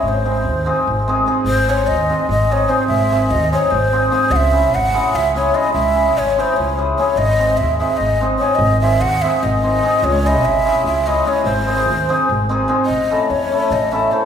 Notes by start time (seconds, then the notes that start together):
0.03 G#1
0.08 C5
0.24 G#3 C4 D#4 G#4
0.45 D#2
0.65 G#3 C4 D#4 G#4
0.87 G#1
1.08 G#3 C4 D#4 G#4
1.26 G#3 C4 D#4 G#4
1.44 G#1 C5
1.68 G#3 C4 D#4 G#4 C#5
1.87 D#2 D#5
2.09 G#3 C4 D#4 G#4
2.29 G#1 D#5
2.50 G#3 C4 D#4 G#4 C#5
2.68 G#3 C4 D#4 G#4 C5
2.88 G#1 E5
3.11 G#3 C4 D#4 G#4
3.31 D#2 D#5
3.51 G#3 C4 D#4 G#4 C#5
3.71 G#1 C5
3.92 G#3 C4 D#4 G#4
4.10 G#3 C4 D#4 G#4 C5
4.30 C#2 F#5
4.36 E5
4.51 G#3 C#4 E4 G#4
4.72 G#1 F#5
4.93 G#3 C#4 E4 G#4
5.15 C#2 E5
5.35 G#3 C#4 E4 G#4 C#5
5.54 G#3 C#4 E4 G#4 D#5
5.73 C#2 E5
5.95 G#3 C#4 E4 G#4
6.16 G#1 C#5
6.37 G#3 C#4 E4 G#4 C5
6.57 C#2 C#5
6.77 G#3 C#4 E4 G#4
6.98 G#3 C#4 E4 G#4 C#5
7.16 G#1 D#5
7.39 G#3 C4 D#4 G#4
7.57 D#2 E5
7.79 G#3 C4 D#4 G#4 E5
7.97 G#1 D#5
8.21 G#3 C4 D#4 G#4
8.39 G#3 C4 D#4 G#4 C#5
8.55 G#1 D#5
8.81 G#3 C4 D#4 G#4 E5
9.01 D#2 F#5
9.22 G#3 C4 D#4 G#4 E5
9.43 G#1 D#5
9.63 G#3 C4 D#4 G#4
9.83 G#3 C4 D#4 G#4
10.02 C#2 C#5
10.24 G#3 C#4 E4 G#4 D#5
10.42 G#1 E5
10.65 G#3 C#4 E4 G#4
10.84 C#2 E5
11.06 G#3 C#4 E4 G#4 D#5
11.25 G#3 C#4 E4 G#4 C#5
11.44 G#1 C5
11.66 G#3 C4 D#4 G#4
11.86 D#2
12.09 G#3 C4 D#4 G#4
12.29 G#1
12.49 G#3 C4 D#4 G#4
12.68 G#3 C4 D#4 G#4
12.86 A1 D#5
13.10 A3 C#4 E4 A4
13.30 E2 C#5
13.52 A3 C#4 E4 A4
13.71 A1 D#5
13.92 A3 C#4 E4 A4 E5
14.12 A3 C#4 E4 A4 C5